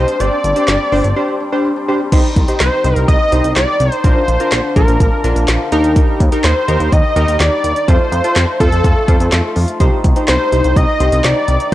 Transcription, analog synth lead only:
Already playing: C5
0.20 D5
2.60 C5
3.08 D#5
3.56 D5
3.92 C5
4.04 C5
4.76 A#4
6.44 C5
6.92 D#5
7.41 D5
7.88 C5
8.60 A4
10.29 C5
10.76 D#5
11.24 D5

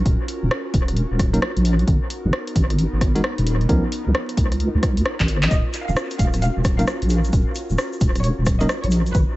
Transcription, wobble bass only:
0.06 D#1
0.43 D#1
0.74 D#1
1.11 D#1
1.56 A#1
1.87 G#1
2.25 G#1
2.56 G#1
2.93 G#1
3.38 D#1
3.69 C#2
4.06 C#2
4.37 C#2
4.75 C#2
5.20 G#1
5.51 D#1
5.88 D#1
6.19 D#1
6.57 D#1
7.02 A#1
7.33 D#1
7.70 D#1
8.01 D#1
8.38 D#1
8.84 A#1
9.15 G#1

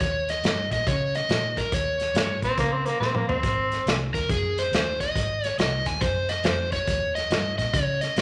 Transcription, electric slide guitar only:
Already playing: C#5
0.30 D#5
0.73 D#5
0.88 C#5
1.16 D#5
1.58 A#4
1.74 C#5
4.14 A#4
4.31 G#4
4.59 C5
5.01 D#5
5.46 C#5
5.60 D#5
5.86 G#5
6.01 C5
6.29 D#5
6.45 C5
6.73 C#5
7.15 D#5
7.58 D#5
7.73 C#5
8.01 D#5

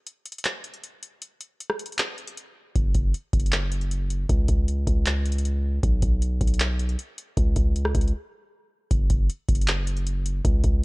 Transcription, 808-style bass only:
2.76 F#1
2.95 F#1
3.33 F#1
4.29 C#2
4.49 C#2
4.87 C#2
5.83 B1
6.02 B1
6.41 B1
7.37 C#2
7.56 C#2
7.95 C#2
8.91 F#1
9.10 F#1
9.49 F#1
10.45 C#2
10.64 C#2

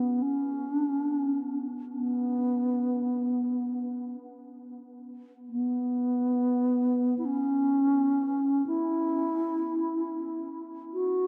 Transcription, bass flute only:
Already playing: B3
0.22 C#4
0.74 D4
0.87 C#4
1.03 D4
1.16 C#4
1.94 B3
5.50 B3
7.18 E4
7.25 C#4
8.67 E4
10.94 F#4

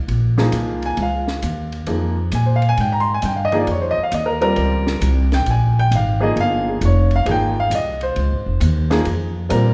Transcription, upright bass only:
0.08 A#1
0.52 C2
0.97 C#2
1.43 D#2
1.87 F2
2.32 A#2
2.77 G#2
3.23 G2
3.67 F2
3.97 muted upright bass stroke
4.12 D#2
4.57 C#2
5.01 C2
5.46 A#1
5.91 G#1
6.36 G1
6.81 F1
7.25 G#1
7.70 C2
8.16 C#2
8.31 G#1
8.46 F1
8.60 D#2
9.06 F2
9.51 A#2

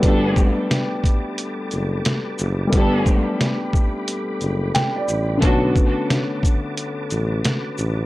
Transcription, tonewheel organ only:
Already playing: B4 A5 D6
0.02 G4
2.74 B5
5.44 F#4 B4 A5 D6

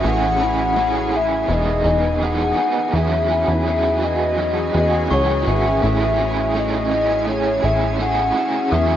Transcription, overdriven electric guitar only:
0.03 A3 C#4 E4 G#4
0.40 E4 G#4
0.44 C#4
0.76 A3 C#4 E4 G#4
1.12 E4 G#4
1.17 C#4
1.48 G#3 B3 D#4
1.52 G#4
1.84 D#4 G#4
1.89 B3
2.21 E3 G#3 B3 D#4 G#4
2.57 D#4 G#4
2.62 B3
2.93 E3 F#3 C#4 F#4 G#4
3.29 F#4 G#4
3.34 C#4
3.66 E3 F#3 C#4 F#4 G#4
4.02 F#4 G#4
4.07 C#4
4.37 F#3 C#4 F#4
4.42 G#4
4.74 F#4 G#4
4.79 C#4
5.10 E3 F#3 C#4 F#4 G#4
5.46 F#4 G#4
5.51 C#4
5.82 A3 C#4 E4 G#4
6.18 E4 G#4
6.23 C#4
6.54 A3 C#4 E4 G#4
6.90 E4 G#4
6.96 C#4
7.26 A3 C#4 E4
7.31 G#4
7.63 E4 G#4
7.67 C#4
7.99 A3 C#4 E4 G#4
8.35 E4 G#4
8.40 C#4
8.71 E3 F#3 C#4 F#4 G#4

